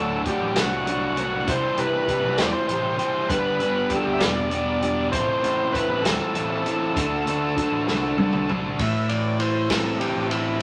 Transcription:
Already playing: D2 D3 F#3 D4 F#4 A4
0.00 A3
0.25 F#3 A3 D4 F#4 G4, kick, closed hi-hat
0.41 A1
0.55 C2 A3 D4 F#4, snare, closed hi-hat
0.86 F#3 A3 D4 F#4, closed hi-hat
1.17 A3 D4 F#4, closed hi-hat
1.46 C2 C3 E3 G3 E4 G4 C5, kick, closed hi-hat
1.76 C3 G3 E4 G4 B4, closed hi-hat
2.07 E3 G3 E4 G4, kick, closed hi-hat
2.24 C2
2.37 E2 G3 E4 G4 C5, snare, closed hi-hat
2.46 D5
2.53 C5
2.68 A1 E3 G3 E4 G4 C5, closed hi-hat
2.97 G3 E4 G4 C5, closed hi-hat
3.28 G1 G2 D3 G3 B3 D4 G4 B4, kick, closed hi-hat
3.59 G1 G3 B3 D4 G4, closed hi-hat
3.90 G3 B3 D4 G4, kick, closed hi-hat
3.96 A4
4.04 D2 G4
4.13 E5
4.19 E1 G3 B3 D4 G4 D5, snare, closed hi-hat
4.50 G3 B3 D4 G4, closed hi-hat
4.81 G3 B3 D4 G4, closed hi-hat
5.10 A1 A2 E3 C4 E4 A4 C5, kick, closed hi-hat
5.41 A2 C4 E4 A4, closed hi-hat
5.72 E3 C4 E4 A4 B4, kick, closed hi-hat
5.89 A1
6.02 D2 E4 A4, snare, closed hi-hat
6.06 C4
6.33 A1 E3 C4 E4 A4, closed hi-hat
6.64 C4 E4 A4, closed hi-hat
6.94 D2 D3 D4 F#4 A4, kick, closed hi-hat
7.26 D2 D4 F#4 A4, closed hi-hat
7.56 D3 D4 F#4 A4, kick, closed hi-hat
7.72 A1
7.87 C2 D4 F#4 A4, snare
8.18 D3 D4 F#4 A4, high tom
8.33 mid tom
8.48 D4 F#4 A4, mid tom
8.79 A1 A2 E5, kick, ride
9.09 A1 D5, ride
9.39 E4 C5, ride
9.69 C4 A4, kick, snare, ride
9.99 G4 A4, ride
10.16 A1
10.28 E4, ride
10.59 G3

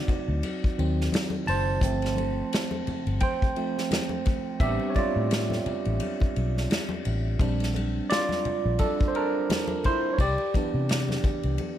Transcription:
Already playing: F#3 C4 D#4 F#4 D5
0.08 muted fingered electric bass stroke, kick, ride, low conga
0.28 D2
0.43 ride, high conga
0.64 muted fingered electric bass stroke, kick
0.78 D#2 D#3 F#3 C4, ride
1.01 snare
1.12 snare, ride, muted conga, high conga
1.30 high conga
1.46 F#1 C5 A5, open hi-hat, ride, low conga
1.81 G1 F3 A3 C4, kick, hi-hat pedal, ride, muted conga, low conga
2.02 snare, ride
2.16 ride, high conga
2.53 snare, ride
2.71 muted conga, high conga
2.87 muted fingered electric bass stroke, ride, low conga
3.07 G1, ride
3.20 C5 G5, kick, ride, muted conga, high conga
3.42 kick
3.56 F3 A3 C4, ride
3.78 snare
3.91 snare, ride, muted conga, high conga
4.09 high conga
4.25 kick, ride, low conga
4.60 A1 G3 B3 C4 D4 G4 E5, kick, ride, low conga
4.80 muted conga
4.90 C#5
4.95 F4 D5, muted fingered electric bass stroke, kick, ride, high conga
5.16 A2
5.31 snare, ride, muted conga
5.50 snare, muted conga, high conga
5.66 muted fingered electric bass stroke, ride, low conga
5.85 A1, ride
6.00 ride, muted conga, high conga
6.20 muted fingered electric bass stroke, kick, muted conga
6.36 B1, ride
6.57 snare
6.70 snare, ride, high conga
6.89 muted conga, high conga
7.05 A1, ride, low conga
7.39 A#1 G3 C4 D4, kick, ride, low conga
7.60 snare, ride
7.74 ride, high conga
8.10 F4 D5, snare, ride, muted conga
8.29 snare, muted conga, high conga
8.45 muted fingered electric bass stroke, ride, low conga
8.65 A#1
8.79 D4 A4, kick, ride, muted conga, high conga
9.00 kick, muted conga
9.08 C5
9.15 D4 A#4, ride
9.50 snare, ride, muted conga, high conga
9.68 muted conga, high conga
9.84 E4 C5, kick, ride, low conga
10.13 C#5
10.18 C2 G4 D5, kick, ride, low conga
10.38 muted conga
10.54 E3 B3 D4, muted fingered electric bass stroke, kick, ride, high conga
10.74 C3
10.89 snare, ride
11.09 snare, high conga
11.24 muted fingered electric bass stroke, kick, ride, low conga
11.43 C2, ride
11.58 ride, muted conga, high conga

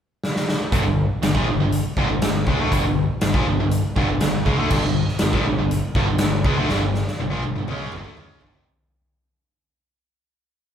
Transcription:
0.23 snare
0.36 snare
0.49 snare
0.72 G1 G2 D3, kick, closed hi-hat
0.84 G1 G2 D3
1.23 G1 G2 D3, snare, closed hi-hat
1.35 A#1 A#2 F3, kick
1.47 G1 G2 D3
1.59 G1 G2 D3
1.72 closed hi-hat
1.97 G1 G2 D3, kick
2.09 G1 G2 D3
2.21 G1 G2 D3, snare, closed hi-hat
2.47 C#2 C#3 G#3, kick
2.58 D2 D3 A3
2.72 G1 G2 D3, kick, closed hi-hat
2.84 G1 G2 D3
3.21 G1 G2 D3, snare, closed hi-hat
3.34 A#1 A#2 F3, kick
3.46 G1 G2 D3
3.59 G1 G2 D3
3.71 closed hi-hat
3.96 G1 G2 D3, kick
4.08 G1 G2 D3
4.20 G1 G2 D3, snare, closed hi-hat
4.46 C#2 C#3 G#3, kick
4.58 D2 D3 A3
4.71 G1 G2 D3, kick, crash
4.83 G1 G2 D3
5.08 snare
5.19 G1 G2 D3, snare, closed hi-hat
5.33 A#1 A#2 F3, kick
5.46 G1 G2 D3
5.58 G1 G2 D3
5.71 closed hi-hat
5.95 G1 G2 D3, kick
6.08 G1 G2 D3
6.18 G1 G2 D3, snare, closed hi-hat
6.44 C#2 C#3 G#3, kick
6.58 D2 D3 A3
6.69 G1 G2 D3, snare
6.82 G1 G2 D3
6.94 snare
7.08 snare
7.19 G1 G2 D3, high tom
7.30 A#1 A#2 F3
7.43 G1 G2 D3, high tom
7.56 G1 G2 D3, mid tom
7.68 C#2 C#3 G#3 C#4, mid tom
7.92 G1 G2 D3, mid tom
8.04 D2 D3 A3, mid tom
8.17 C#2 C#3 G#3 C#4, mid tom
8.41 G1 G2 D3, floor tom
8.53 F1 F2 C3, floor tom

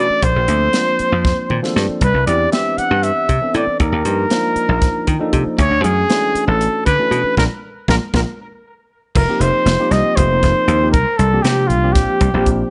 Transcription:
Already playing: E3 A3 C#4 D4 F#4 D5
0.10 muted slap bass stroke
0.22 A#1 C5, kick, closed hi-hat
0.36 A#1
0.48 D2 F3 A#3 C4 D4 A4, closed hi-hat
0.73 F3 A#3 C4 D4 F4, snare, closed hi-hat
0.99 muted slap bass stroke, closed hi-hat
1.12 F2
1.25 kick, snare
1.50 A#2 G5, mid tom
1.62 F3 A#3 C4 D4 A4, snare
1.76 G2 D5, snare
1.89 muted slap bass stroke
2.01 C2 B4, kick, closed hi-hat
2.14 C2
2.26 E2 E3 B3 C4 D4 G4 D5, closed hi-hat
2.52 E3 B3 C4 D4 G4 E5, snare, closed hi-hat
2.78 F#5, muted slap bass stroke, closed hi-hat
2.91 G2
3.03 E5, closed hi-hat
3.29 C3, kick, closed hi-hat
3.41 E3 B3 C4 D4 A4
3.54 A2 D5, closed hi-hat
3.67 muted slap bass stroke
3.80 D#2 A#4, kick, closed hi-hat
3.92 D#2
4.05 G2 F3 A#3 D4 D#4 G4, closed hi-hat
4.30 F3 A#3 D4 D#4 F4, snare, closed hi-hat
4.56 muted slap bass stroke, closed hi-hat
4.69 A#1
4.82 kick, snare, closed hi-hat
5.07 D#3 G5, kick, closed hi-hat
5.19 F3 A#3 D4 D#4 A4
5.33 C3 D#5, kick, closed hi-hat
5.46 muted slap bass stroke
5.58 D2 C#5, kick, closed hi-hat
5.71 D2
5.83 F#2 E3 A3 C#4 D4 F#4 G#4, closed hi-hat
6.09 E3 A3 C#4 D4 F#4, snare, closed hi-hat
6.35 muted slap bass stroke, closed hi-hat
6.48 A1 A4
6.61 closed hi-hat
6.86 D3 B4, kick, closed hi-hat
6.98 E3 A3 C#4 D4 F#4
7.11 B2, closed hi-hat
7.24 muted slap bass stroke
7.37 A#1 A#3 D4 F4 A#4, kick, snare
7.88 A#1 A#3 D4 F4 A#4, kick, snare
8.13 A#1 A#3 D4 F4 A#4, kick, snare
9.15 F1 A#4, kick, crash
9.28 F3 A#3 C4 D#4 G4
9.40 F1 C5, closed hi-hat
9.65 F1, snare, closed hi-hat
9.78 F3 A#3 C4 D#4 G4
9.91 C2 D#5, snare, closed hi-hat
10.16 F1 C5, kick, closed hi-hat
10.30 F3 A#3 C4 D#4 A#4
10.43 F1, kick, snare, closed hi-hat
10.68 D#2, closed hi-hat
10.81 F3 A#3 C4 D#4 G4
10.92 C2 A#4, kick, closed hi-hat
11.18 C2 A4, closed hi-hat
11.32 F3 A#3 C4 D4 G4
11.42 C3 G4, snare, closed hi-hat
11.68 C2 F4, closed hi-hat
11.83 F3 A#3 C4 D4 G4
11.93 A#1 G4, kick, snare, closed hi-hat
12.20 C2, kick, closed hi-hat
12.33 A#1 F3 A#3 C4 D4 G4
12.46 kick, closed hi-hat

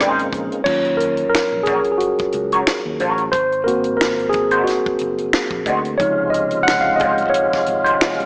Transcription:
Already playing: C#3 G#3 A#3 C4 C#4 D#4 A#4 C5
0.00 G#1 C#4 D#4 G#4 C5, cross-stick, closed hi-hat
0.19 closed hi-hat
0.33 A#1, kick, closed hi-hat
0.52 closed hi-hat
0.64 D#2 F#3 C#4 F4 C#5, kick, crash
0.85 closed hi-hat
0.97 A#4, closed hi-hat
1.17 closed hi-hat
1.29 A#4
1.35 finger snap, muted fingered electric bass stroke, snare, closed hi-hat
1.52 A#1
1.63 G#4, kick, closed hi-hat
1.67 C#4 F#4 A#4 C#5
1.84 closed hi-hat
1.92 G#4
1.98 F#4, closed hi-hat
2.18 kick, closed hi-hat
2.32 C#2, closed hi-hat
2.52 C#4 F#4 A#4 C#5, closed hi-hat
2.67 finger snap, muted clean electric guitar stroke, snare, closed hi-hat
2.86 D#2
3.00 A1 C#4 F#4 A#4 C#5, closed hi-hat
3.18 closed hi-hat
3.32 G#1 C5, kick, closed hi-hat
3.52 closed hi-hat
3.64 A#3 C4 F#4 A#4, closed hi-hat
3.84 closed hi-hat
3.97 A#4
4.01 finger snap, snare, closed hi-hat
4.19 closed hi-hat
4.29 G#4, closed hi-hat
4.34 kick
4.51 G#3 D#4 F#4 C5, closed hi-hat
4.63 F#4, closed hi-hat
4.68 snare
4.86 kick
4.98 F#1, closed hi-hat
5.18 closed hi-hat
5.33 finger snap, snare, closed hi-hat
5.51 A#1, kick
5.66 D2 G#3 D#4 F#4 C5, kick, closed hi-hat
5.85 closed hi-hat
5.98 C#2 C3 F3 G#3 D#4 F4 C#5, kick, closed hi-hat
6.30 D#5, closed hi-hat
6.51 closed hi-hat
6.63 F#5
6.68 finger snap, snare, closed hi-hat
6.81 F5
6.96 D#5, closed hi-hat
7.01 G#3 C#4 F4 C5, kick
7.18 closed hi-hat
7.30 C#5
7.34 closed hi-hat
7.53 kick, snare
7.66 G#1, closed hi-hat
7.84 G#3 C#4 F4 C5, closed hi-hat
8.01 finger snap, muted clean electric guitar stroke, snare, closed hi-hat
8.19 C2, closed hi-hat

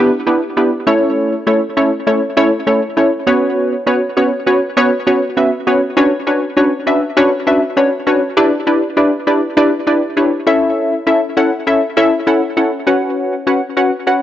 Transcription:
Already playing: B3 D4 E4 G4 B4
0.27 B3 D4 E4 G4 B4
0.57 B3 D4 E4 G4 B4
0.87 A3 C#4 E4 A4 C#5
1.47 A3 C#4 E4 A4 C#5
1.77 A3 C#4 E4 A4 C#5
2.07 A3 C#4 E4 A4 C#5
2.37 A3 C#4 E4 A4 C#5
2.67 A3 C#4 E4 A4 C#5
2.97 A3 C#4 E4 A4 C#5
3.27 B3 C#4 F#4 B4 C#5
3.87 B3 C#4 F#4 B4 C#5
4.17 B3 C#4 F#4 B4 C#5
4.47 B3 C#4 F#4 B4 C#5
4.77 B3 C#4 F#4 B4 C#5
5.07 B3 C#4 F#4 B4 C#5
5.37 B3 C#4 F#4 B4 E5
5.67 B3 C#4 F#4 B4 C#5
5.97 C#4 D4 F#4 B4 C#5
6.27 C#4 D4 F#4 B4 C#5
6.57 C#4 D4 F#4 B4 C#5
6.87 C#4 D4 F#4 B4 E5
7.17 C#4 D4 F#4 B4 C#5
7.47 C#4 D4 F#4 B4 E5
7.77 C#4 D4 F#4 B4 C#5
8.07 C#4 D4 F#4 B4 C#5
8.37 D4 E4 G4 B4 D5
8.67 D4 E4 G4 B4 D5
8.97 D4 E4 G4 B4 D5
9.27 D4 E4 G4 B4 D5
9.57 D4 E4 G4 B4 D5
9.87 D4 E4 G4 B4 D5
10.17 D4 E4 G4 B4 C#5
10.47 C#4 E4 A4 C#5 E5
11.07 C#4 E4 A4 C#5 E5
11.37 C#4 E4 A4 C#5 F#5
11.67 C#4 E4 A4 C#5 E5
11.97 C#4 E4 A4 C#5 E5
12.27 C#4 E4 A4 C#5 F#5
12.57 C#4 E4 A4 C#5 F#5
12.87 C#4 F#4 B4 C#5 F#5
13.47 C#4 F#4 B4 C#5 F#5
13.77 C#4 F#4 B4 C#5 F#5
14.07 C#4 F#4 B4 C#5 F#5

